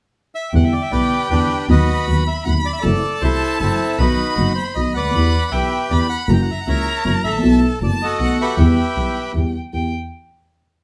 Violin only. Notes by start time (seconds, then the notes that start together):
0.52 G5
1.69 B5
2.45 B5
2.83 A5
3.98 B5
5.14 B5
5.52 G5
5.91 B5
6.30 A#5
7.43 A5
7.82 A5
8.21 F#5
8.59 G5
9.74 G5